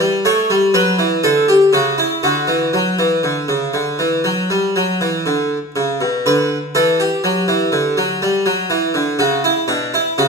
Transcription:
0.00 0.24 G3 medium
0.25 0.49 A3 loud
0.25 0.56 C#5 medium
0.50 0.74 G3 medium
0.74 0.98 F#3 loud
0.74 1.05 B4 medium
0.99 1.23 E3 medium
1.24 1.54 D3 medium
1.24 1.48 A4 medium
1.48 1.72 G4 medium
1.73 2.04 C#3 medium
1.73 1.97 F#4 medium
1.98 2.22 E4 medium
2.23 2.47 D3 medium
2.23 5.71 F#4 medium
2.48 2.72 E3 medium
2.74 2.98 F#3 medium
2.99 3.23 E3 medium
3.24 3.48 D3 medium
3.48 3.73 C#3 medium
3.74 3.98 D3 medium
3.99 4.23 E3 medium
4.24 4.48 F#3 medium
4.50 4.74 G3 medium
4.76 4.99 F#3 medium
5.01 5.25 E3 medium
5.26 5.57 D3 medium
5.76 6.00 C#3 medium
6.01 6.24 B2 medium
6.26 6.56 D3 loud
6.26 6.57 B4 medium
6.75 7.05 E3 loud
6.75 6.98 A4 medium
7.00 9.15 G4 medium
7.24 7.47 F#3 medium
7.48 7.72 E3 medium
7.72 7.96 D3 medium
7.97 8.21 F#3 medium
8.22 8.45 G3 medium
8.46 8.69 F#3 medium
8.70 8.93 E3 medium
8.94 9.18 D3 medium
9.19 9.49 C#3 medium
9.19 9.43 F#4 medium
9.44 9.68 E4 medium
9.68 9.98 B2 medium
9.68 9.92 D4 medium
9.94 10.17 E4 medium
10.18 10.28 C#3 loud
10.18 10.28 F#4 medium

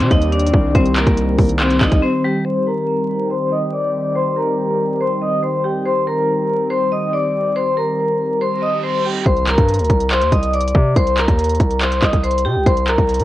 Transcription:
0.00 0.10 C3 loud
0.00 2.42 D#3 medium
0.00 2.41 G3 medium
0.00 2.42 C4 medium
0.00 2.41 G4 medium
0.00 closed hi-hat medium
0.11 0.52 D#2 loud
0.11 0.29 D#4 medium
0.11 0.30 D#5 medium
0.11 kick medium
0.11 closed hi-hat medium
0.22 closed hi-hat medium
0.32 0.72 D4 medium
0.32 0.73 D5 medium
0.32 closed hi-hat soft
0.39 closed hi-hat medium
0.46 closed hi-hat medium
0.53 0.74 C2 loud
0.53 kick loud
0.75 1.05 C2 loud
0.75 0.93 C4 medium
0.75 0.93 C5 medium
0.75 kick loud
0.75 closed hi-hat medium
0.85 closed hi-hat soft
0.96 1.56 A#3 medium
0.96 1.57 A#4 medium
0.96 clap medium
0.96 closed hi-hat medium
1.07 1.37 C2 loud
1.07 kick loud
1.07 closed hi-hat medium
1.17 closed hi-hat medium
1.39 1.79 C2 loud
1.39 kick loud
1.39 open hi-hat medium
1.49 closed hi-hat medium
1.60 1.78 C4 medium
1.60 1.79 C5 medium
1.60 clap loud
1.60 closed hi-hat medium
1.71 closed hi-hat medium
1.81 2.02 C2 loud
1.81 1.99 D#4 medium
1.81 2.00 D#5 medium
1.81 kick medium
1.81 clap medium
1.81 closed hi-hat medium
1.92 kick loud
1.92 closed hi-hat medium
2.02 2.20 C4 medium
2.02 2.21 C5 medium
2.24 2.42 G3 medium
2.24 2.42 G4 medium
2.45 9.22 D#3 medium
2.45 9.22 G3 medium
2.45 5.82 C4 medium
2.45 9.22 G4 medium
2.45 2.63 C5 medium
2.45 2.63 C6 medium
2.66 3.26 A#4 medium
2.66 3.27 A#5 medium
3.30 3.48 C5 medium
3.30 3.49 C6 medium
3.51 3.69 D#5 medium
3.51 3.70 D#6 medium
3.73 4.13 D5 medium
3.73 4.13 D6 medium
4.15 4.33 C5 loud
4.15 4.34 C6 medium
4.36 4.96 A#4 medium
4.36 4.97 A#5 soft
5.01 5.19 C5 medium
5.01 5.19 C6 medium
5.22 5.40 D#5 medium
5.22 5.40 D#6 medium
5.43 5.61 C5 medium
5.43 5.61 C6 medium
5.64 5.82 G4 medium
5.64 5.83 G5 medium
5.85 9.22 C4 medium
5.85 6.03 C5 medium
5.85 6.04 C6 medium
6.07 6.67 A#4 medium
6.07 6.67 A#5 medium
6.70 6.88 C5 medium
6.70 6.89 C6 medium
6.92 7.10 D#5 medium
6.92 7.10 D#6 medium
7.13 7.53 D5 medium
7.13 7.53 D6 medium
7.56 7.74 C5 medium
7.56 7.74 C6 medium
7.77 8.37 A#4 medium
7.77 8.37 A#5 soft
8.41 8.59 C5 medium
8.41 8.59 C6 medium
8.41 reverse cymbal medium
8.62 8.80 D#5 medium
8.62 8.80 D#6 medium
8.83 9.01 C5 medium
8.83 9.02 C6 medium
9.05 9.23 G4 medium
9.05 9.23 G5 medium
9.26 9.57 C2 loud
9.26 9.44 C5 medium
9.26 9.44 C6 medium
9.26 kick loud
9.26 closed hi-hat medium
9.26 impact medium
9.37 closed hi-hat soft
9.47 10.07 A#4 medium
9.47 10.08 A#5 medium
9.47 clap medium
9.47 closed hi-hat medium
9.58 9.81 G2 loud
9.58 kick medium
9.58 closed hi-hat medium
9.68 closed hi-hat medium
9.74 closed hi-hat medium
9.79 9.89 D2 loud
9.79 closed hi-hat medium
9.84 closed hi-hat soft
9.90 10.23 C2 loud
9.90 kick medium
9.90 closed hi-hat medium
10.00 closed hi-hat medium
10.11 10.29 C5 medium
10.11 10.30 C6 medium
10.11 clap loud
10.11 closed hi-hat medium
10.22 10.32 D#2 loud
10.22 closed hi-hat medium
10.32 10.73 C2 loud
10.32 10.50 D#5 medium
10.32 10.51 D#6 medium
10.32 kick medium
10.32 closed hi-hat medium
10.43 closed hi-hat medium
10.54 10.94 D5 medium
10.54 10.94 D6 medium
10.54 closed hi-hat soft
10.61 closed hi-hat medium
10.68 closed hi-hat medium
10.75 10.95 C3 loud
10.75 kick loud
10.96 11.27 C2 loud
10.96 11.14 C5 loud
10.96 11.15 C6 medium
10.96 kick loud
10.96 closed hi-hat medium
11.07 closed hi-hat soft
11.17 11.77 A#4 medium
11.17 11.78 A#5 medium
11.17 clap medium
11.17 closed hi-hat medium
11.28 11.59 D#2 loud
11.28 kick medium
11.28 closed hi-hat medium
11.39 closed hi-hat medium
11.44 closed hi-hat medium
11.49 closed hi-hat medium
11.55 closed hi-hat soft
11.60 12.01 C2 loud
11.60 kick loud
11.60 closed hi-hat medium
11.71 closed hi-hat medium
11.81 11.99 C5 medium
11.81 12.00 C6 medium
11.81 clap loud
11.81 closed hi-hat medium
11.92 closed hi-hat medium
12.02 12.46 C2 loud
12.02 12.20 D#5 medium
12.02 12.21 D#6 medium
12.02 kick medium
12.02 clap medium
12.02 closed hi-hat medium
12.13 kick loud
12.13 closed hi-hat medium
12.23 12.42 C5 medium
12.23 12.42 C6 medium
12.23 closed hi-hat soft
12.31 closed hi-hat medium
12.38 closed hi-hat medium
12.45 12.57 C3 loud
12.45 12.63 G4 medium
12.45 12.63 G5 medium
12.56 12.66 C2 loud
12.66 12.97 C2 loud
12.66 12.84 C5 medium
12.66 12.85 C6 medium
12.66 kick loud
12.66 closed hi-hat medium
12.77 closed hi-hat soft
12.88 13.24 A#4 medium
12.88 13.24 A#5 medium
12.88 clap medium
12.88 closed hi-hat medium
12.98 13.21 C2 loud
12.98 kick medium
12.98 closed hi-hat soft
13.09 closed hi-hat medium
13.14 closed hi-hat medium
13.19 13.24 D#3 loud
13.19 closed hi-hat medium

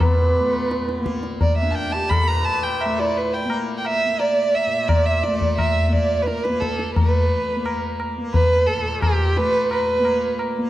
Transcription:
0.00 2.23 A#2 soft
0.00 0.40 A3 medium
0.00 1.00 A#3 medium
0.00 0.18 B3 medium
0.00 1.06 B4 medium
0.00 tabla tin medium
0.00 tabla ge medium
0.19 1.20 B3 medium
0.40 2.85 A3 medium
0.71 tabla te medium
0.89 tabla te medium
1.00 1.62 A#3 medium
1.06 tabla ke medium
1.23 tabla te medium
1.41 1.57 D5 medium
1.41 tabla tin medium
1.41 tabla ge medium
1.58 1.96 D4 medium
1.58 1.72 E5 medium
1.62 3.45 A#3 medium
1.71 1.76 A5 medium
1.75 1.93 G5 medium
1.92 2.13 G4 medium
1.92 2.11 A5 medium
2.10 2.31 A4 medium
2.10 2.29 B5 medium
2.10 tabla na medium
2.10 tabla ge medium
2.23 4.66 A#2 soft
2.28 3.01 B4 medium
2.28 2.46 A#5 medium
2.45 2.64 A5 medium
2.63 2.82 G5 medium
2.81 3.01 E5 medium
2.81 tabla na medium
2.85 5.27 A3 medium
2.99 3.68 E4 medium
2.99 3.18 D5 medium
3.17 3.35 B4 medium
3.34 3.51 G5 medium
3.45 4.06 A#3 medium
3.50 tabla na medium
3.77 3.87 G5 medium
3.85 4.22 E5 medium
3.85 tabla na medium
4.06 5.88 A#3 soft
4.20 4.56 D5 medium
4.20 tabla tin medium
4.54 4.89 E5 medium
4.66 8.76 A#2 medium
4.88 5.07 D5 medium
4.88 tabla na medium
4.88 tabla ge medium
5.06 5.25 E5 medium
5.23 5.57 D5 medium
5.23 tabla te medium
5.27 6.96 A3 medium
5.41 tabla ge soft
5.58 5.85 E5 medium
5.58 tabla na medium
5.58 tabla ge medium
5.85 6.49 A#3 medium
5.85 5.94 E5 medium
5.93 6.24 D5 medium
5.93 tabla ge soft
6.22 6.28 B4 medium
6.26 6.45 A#4 medium
6.26 tabla te medium
6.44 6.62 B4 medium
6.44 tabla te medium
6.49 7.56 A#3 medium
6.60 6.94 A4 medium
6.60 tabla ke medium
6.79 tabla te medium
6.95 9.38 A3 medium
6.95 7.95 B4 medium
6.95 tabla tin medium
6.95 tabla ge medium
7.56 8.18 A#3 soft
7.66 tabla na medium
8.00 tabla na medium
8.18 9.99 A#3 medium
8.33 8.68 B4 medium
8.33 tabla tin medium
8.33 tabla ge medium
8.67 9.02 A4 medium
8.77 10.70 A#2 medium
9.02 9.39 G4 medium
9.02 tabla na medium
9.02 tabla ge medium
9.37 10.70 A3 medium
9.37 9.71 B4 loud
9.37 tabla te medium
9.71 10.36 B4 medium
9.71 tabla na medium
9.99 10.58 A#3 medium
10.05 tabla na medium
10.39 tabla na medium
10.58 10.70 A#3 medium

